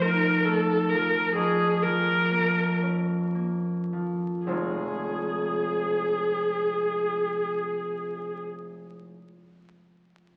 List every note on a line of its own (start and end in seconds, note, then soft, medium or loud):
0.00 1.33 F2 soft
0.00 0.90 F3 soft
0.00 0.45 A3 soft
0.00 1.33 C4 soft
0.00 0.47 A#4 medium
0.05 1.39 D#4 soft
0.45 1.39 A3 soft
0.45 0.91 A4 medium
0.90 1.82 F3 soft
0.90 1.34 A#4 medium
1.35 4.50 F2 soft
1.35 1.84 G#4 medium
1.82 3.92 F3 soft
1.82 2.81 A#4 medium
2.31 3.33 A#3 soft
2.83 4.51 C#4 soft
3.35 4.51 A#3 soft
3.93 4.46 F3 soft
4.46 9.11 F1 soft
4.46 9.11 C2 soft
4.46 9.12 F3 soft
4.46 9.12 G#3 soft
4.46 9.12 C4 soft
4.46 9.12 F4 soft
4.46 8.41 G#4 soft